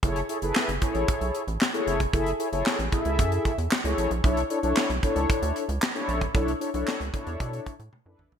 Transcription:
<<
  \new Staff \with { instrumentName = "Analog polysynth" } { \time 4/4 \key fis \minor \tempo 4 = 114 <e' gis' a' cis''>16 r16 <e' gis' a' cis''>16 <e' gis' a' b'>8 r16 <e' gis' a' cis''>4~ <e' gis' a' cis''>16 r8 <e' gis' a' cis''>8 r16 | <e' gis' a' e''>16 r16 <e' gis' a' cis''>16 <e' gis' a' cis''>8 r16 <e' gis' a' dis'' e''>4~ <e' gis' a' dis'' e''>16 r8 <e' gis' a' cis''>8 r16 | <d' e' a' cis''>16 r16 <d' e' a' cis''>16 <d' e' a' cis''>8 r16 <d' e' a' cis''>4~ <d' e' a' cis''>16 r8 <d' e' a' cis''>8 r16 | <d' e' a' cis''>16 r16 <d' e' a' cis''>16 <d' e' a' cis''>8 r16 <d' e' a' cis''>4~ <d' e' a' cis''>16 r8 <d' e' a' b'>8 r16 | }
  \new Staff \with { instrumentName = "Analog synth bass" } { \clef bass \time 4/4 \key fis \minor fis,,8 r16 fis,,16 r16 fis,,16 r16 a,,16 r16 b,,16 r16 a,,16 r8 eis,,8 | fis,,8 r16 fis,,16 r16 a,,16 r16 cis,16 fis,8 r16 e,16 r16 cis,16 a,,16 ais,,16 | b,,8 r16 b,,16 r16 b,,16 r16 cis,16 r16 d,16 r16 cis,16 r8 ais,,8 | b,,8 r16 b,,16 r16 cis,16 r16 e,16 b,8 r16 a,16 r16 fis,16 a,,16 ais,,16 | }
  \new DrumStaff \with { instrumentName = "Drums" } \drummode { \time 4/4 <hh bd>16 hh16 hh16 hh16 <hc sn>16 hh16 <hh bd>16 hh16 <hh bd>16 hh16 hh16 hh16 <hc sn>16 hh16 hh16 <hh bd>16 | <hh bd>16 hh16 hh16 hh16 <hc sn>16 hh16 <hh bd>16 hh16 <hh bd>16 hh16 <hh bd>16 hh16 <hc sn>16 hh16 hh16 hh16 | <hh bd>16 hh16 hh16 hh16 <hc sn>16 hh16 <hh bd>16 hh16 <hh bd>16 hh16 hh16 hh16 <hc sn>16 hh16 hh16 <hh bd>16 | <hh bd>16 hh16 hh16 hh16 <hc sn>16 hh16 <hh bd>16 hh16 <hh bd>16 hh16 <hh bd>16 hh16 tommh8 toml16 tomfh16 | }
>>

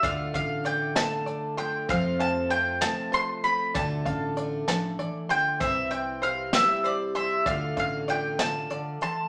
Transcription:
<<
  \new Staff \with { instrumentName = "Mandolin" } { \time 6/8 \key d \dorian \tempo 4. = 65 f''8 f''8 g''8 a''4 g''8 | f''8 a''8 g''8 a''8 c'''8 b''8 | a''2~ a''8 g''8 | e''8 g''8 f''8 e''8 d''8 e''8 |
f''8 f''8 g''8 a''4 a''8 | }
  \new Staff \with { instrumentName = "Five-string banjo" } { \time 6/8 \key d \dorian d''8 f''8 d''8 a''8 d''8 c'''8 | c''8 f''8 c''8 a''8 c''4 | d''8 f''8 d''8 a''8 d''8 c'''8 | c''8 e''8 c''8 g''8 c''8 c'''8 |
d''8 f''8 d''8 a''8 d''8 c'''8 | }
  \new Staff \with { instrumentName = "Steel-string acoustic guitar" } { \time 6/8 \key d \dorian << { d'8 a'8 f'8 d'8 a'8 d'8 | c'8 a'8 f'8 c'8 a'8 c'8 | d'8 a'2~ a'8 | e'8 c''8 g'8 e'8 c''8 e'8 |
<a d' f' a'>8 a'8 f'2 | } \\ { d4. a4. | f4. a4. | d4. f8 e8 d8 | c4. g4. |
d4. c8 d8 e8 | } >> }
  \new Staff \with { instrumentName = "Steel-string acoustic guitar" } { \time 6/8 \key d \dorian <d a d' f'>4 <d a d' f'>8 <d a d' f'>4 <a d' f'>8 | <f, c f a c' f'>4 <f a c' f'>8 <f, c f a c' f'>4 <f a c' f'>8 | <d a d' f'>4 <d a d' f'>8 <d a d'>4 <a d' f'>8 | <c e g c' e'>4 <e g c'>8 <c e g c' e'>4 <g c' e'>8 |
<d a d' f'>4 <d a d' f'>8 <d a d' f'>4 <a d'>8 | }
  \new Staff \with { instrumentName = "Upright bass" } { \clef bass \time 6/8 \key d \dorian d,8 a,,2 r8 | f,2 r4 | d,8 a,,2 r8 | c,2 r4 |
d,8 a,,2 r8 | }
  \new DrumStaff \with { instrumentName = "Drums" } \drummode { \time 6/8 <hh bd>8 <hh bd>8 hh8 <hh sn>8 hh8 hh8 | <hh bd>8 hh8 hh8 <hh sn>8 hh8 hh8 | <hh bd>8 <hh bd>8 hh8 <hh sn>8 hh8 hh8 | <hh bd>8 hh8 hh8 <hh sn>8 hh8 hh8 |
<hh bd>8 <hh bd>8 hh8 <hh sn>8 hh8 hh8 | }
>>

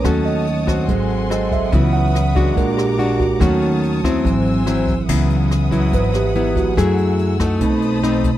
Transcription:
<<
  \new Staff \with { instrumentName = "Violin section" } { \time 4/4 \key cis \minor \tempo 4 = 143 << { <cis'' a'' dis'''>2 <a' gis'' bis''>2 | <b' dis'''>2 <ais' ais'' d'''>2 | <cis'' a'' dis'''>2 <bis' gis'' e'''>2 | <b' fis'' dis'''>1 |
<gis'' e'''>2 <c'' b'' dis'''>2 | } \\ { fis''1 | e''2 r2 | r1 | e''1 |
r2 a''2 | } >> }
  \new Staff \with { instrumentName = "Nylon-string guitar" } { \time 4/4 \key cis \minor << { <cis' fis' a'>4 r8 <bis fis'>4. <bis fis' a'>4 | <b e' fis'>4 r8 <gis d' fis'>4. <gis d' fis'>8 r8 | <a cis' fis'>4 r8 <fis bis e'>4. <fis bis e'>8 r8 | <fis b e'>4 r8 <fis b e'>4. <fis b e'>4 |
<a e' gis'>4. <a dis'>4. <a c' dis'>8 r8 | } \\ { dis2 gis2 | cis2 ais,2 | dis2 gis,2 | cis2 gis,2 |
fis2 b,2 | } >> }
  \new Staff \with { instrumentName = "Tine electric piano" } { \time 4/4 \key cis \minor cis''8 dis''8 r4 bis'4 dis''8 e''8~ | e''8 fis''8 r4 ais'8 g'4 fis'8~ | fis'8 r2. r8 | r2 b'8 g'4 fis'8~ |
fis'8 r2. r8 | }
  \new Staff \with { instrumentName = "Tine electric piano" } { \time 4/4 \key cis \minor <fis a cis'>8 r4. <fis bis>8 r4. | <e fis b>4. r8 <gis d' fis'>2 | <fis a cis'>8 r4. <e fis bis>4. r8 | <e fis b>8 r2. r8 |
<a e'>4. r8 <a c' dis'>2 | }
  \new Staff \with { instrumentName = "Upright bass" } { \clef bass \time 4/4 \key cis \minor dis,2 gis,,2 | cis,2 ais,,2 | dis,2 gis,,2 | cis,2 gis,,2 |
fis,2 b,,2 | }
  \new DrumStaff \with { instrumentName = "Drums" } \drummode { \time 4/4 <hh bd ss>8 hh8 hh8 <hh bd ss>8 <hh bd>8 hh8 <hh ss>8 <hh bd>8 | <hh bd>8 hh8 <hh ss>8 <hh bd>8 <hh bd>8 <hh ss>8 hh8 <hh bd>8 | <hh bd ss>8 hh8 hh8 <hh bd ss>8 <hh bd>8 hh8 <hh ss>8 <hh bd>8 | <cymc bd>8 hh8 <hh ss>8 <hh bd>8 <hh bd>8 <hh ss>8 hh8 <hh bd>8 |
<hh bd ss>8 hh8 hh8 <hh bd ss>8 <hh bd>8 hh8 <hh ss>8 <hh bd>8 | }
>>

